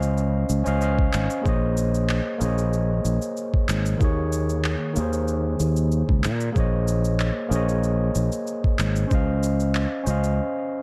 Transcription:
Already playing: fretless electric bass C#2, tine electric piano C#4 C5 D#5 F5
0.03 cabasa
0.17 cabasa
0.49 fretless electric bass C#2, cabasa
0.64 fretless electric bass C#2, tine electric piano C#4 C5 D#5 F5, cabasa
0.80 tine electric piano C#4 C5 D#5 F5, cabasa
0.99 kick
1.13 fretless electric bass G#1, clap, cabasa
1.30 cabasa
1.42 fretless electric bass A#1, tine electric piano A#3 G#4 C5, kick
1.46 tine electric piano C#5 D#5, cabasa
1.77 cabasa
1.95 cabasa
2.09 clap, cabasa
2.38 fretless electric bass A#1, tine electric piano A#3 G#4 C5, cabasa
2.44 tine electric piano C#5 D#5
2.58 cabasa
2.73 cabasa
3.05 fretless electric bass A#1, cabasa
3.22 cabasa
3.37 cabasa
3.54 kick
3.69 fretless electric bass G#1, clap, cabasa
3.86 cabasa
3.97 fretless electric bass D#2, tine electric piano D#3 A#3, kick, cabasa
4.02 tine electric piano G#4 C#5
4.33 cabasa
4.50 cabasa
4.64 clap, cabasa
4.93 fretless electric bass D#2, tine electric piano D#3 A#3, cabasa
4.98 tine electric piano G#4 C5
5.13 cabasa
5.28 cabasa
5.60 fretless electric bass D#2, cabasa
5.77 cabasa
5.92 cabasa
6.09 fretless electric bass C#2, kick
6.24 fretless electric bass A#2, clap, cabasa
6.41 cabasa
6.53 fretless electric bass A#1, tine electric piano A#3 G#4 C5, kick, cabasa
6.58 tine electric piano C#5 D#5
6.88 cabasa
7.05 cabasa
7.20 clap, cabasa
7.49 fretless electric bass A#1, tine electric piano A#3 G#4 C5, cabasa
7.54 tine electric piano C#5 D#5
7.69 cabasa
7.84 cabasa
8.15 fretless electric bass A#1, cabasa
8.32 cabasa
8.47 cabasa
8.64 kick
8.79 fretless electric bass G#1, clap, cabasa
8.96 cabasa
9.07 fretless electric bass C#2, tine electric piano C#4 C5, kick, cabasa
9.12 tine electric piano D#5 F5
9.43 cabasa
9.60 cabasa
9.75 clap, cabasa
10.04 fretless electric bass C#2, tine electric piano C#4 C5, cabasa
10.08 tine electric piano D#5 F5
10.24 cabasa

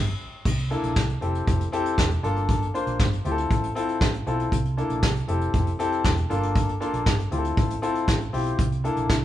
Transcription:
Already playing: fingered electric bass G1
0.45 fingered electric bass C2, kick, crash
0.59 closed hi-hat
0.70 grand piano A#3 D4 E4 A4, closed hi-hat
0.83 fingered electric bass A#1, closed hi-hat
0.96 fingered electric bass C2, kick, snare
1.09 closed hi-hat
1.21 fingered electric bass F1, grand piano C4 E4 G4 A4, closed hi-hat
1.35 closed hi-hat
1.47 fingered electric bass F1, kick, closed hi-hat
1.60 closed hi-hat
1.72 grand piano C4 E4 G4 A4, closed hi-hat
1.85 closed hi-hat
1.98 fingered electric bass E1, kick, snare
2.11 closed hi-hat
2.23 fingered electric bass G1, grand piano A#3 D4 F4 A4, closed hi-hat
2.36 closed hi-hat
2.49 kick, closed hi-hat
2.62 closed hi-hat
2.74 grand piano A#3 D4 F4 C5, closed hi-hat
2.87 fingered electric bass A#1, closed hi-hat
2.99 fingered electric bass G1, kick, snare
3.13 closed hi-hat
3.25 fingered electric bass D2, grand piano C4 E4 F4 G4, closed hi-hat
3.32 grand piano A4
3.38 closed hi-hat
3.51 fingered electric bass A1, kick, closed hi-hat
3.64 closed hi-hat
3.75 grand piano C4 E4 F4 A4, closed hi-hat
3.89 closed hi-hat
4.01 fingered electric bass A1, kick, snare
4.14 closed hi-hat
4.26 fingered electric bass B1, grand piano C4 E4 F4 A4, closed hi-hat
4.40 closed hi-hat
4.52 fingered electric bass C2, kick, closed hi-hat
4.65 closed hi-hat
4.77 grand piano A#3 D4 E4 A4, closed hi-hat
4.90 fingered electric bass A#1, closed hi-hat
5.03 fingered electric bass C2, kick, snare
5.16 closed hi-hat
5.28 fingered electric bass F1, grand piano C4 E4 G4 A4, closed hi-hat
5.41 closed hi-hat
5.54 fingered electric bass F1, kick, closed hi-hat
5.67 closed hi-hat
5.79 grand piano C4 E4 G4 A4, closed hi-hat
5.92 closed hi-hat
6.05 fingered electric bass E1, kick, snare
6.17 closed hi-hat
6.30 fingered electric bass G1, grand piano A#3 D4 F4 A4, closed hi-hat
6.43 closed hi-hat
6.56 kick, closed hi-hat
6.69 closed hi-hat
6.80 grand piano A#3 D4 F4 A4, closed hi-hat
6.93 fingered electric bass A#1, closed hi-hat
7.06 fingered electric bass G1, kick, snare
7.20 closed hi-hat
7.31 fingered electric bass D2, grand piano C4 E4 F4 G4, closed hi-hat
7.38 grand piano A4
7.45 closed hi-hat
7.57 fingered electric bass A1, kick, closed hi-hat
7.70 closed hi-hat
7.82 grand piano C4 E4 F4 A4, closed hi-hat
7.95 closed hi-hat
8.08 fingered electric bass A1, kick, snare
8.20 closed hi-hat
8.33 fingered electric bass B1, grand piano C4 E4 F4 G4, open hi-hat
8.46 closed hi-hat
8.59 fingered electric bass C2, kick, closed hi-hat
8.72 closed hi-hat
8.84 grand piano A#3 D4 E4 A4, closed hi-hat
8.97 fingered electric bass A#1, closed hi-hat
9.10 fingered electric bass C2, kick, snare

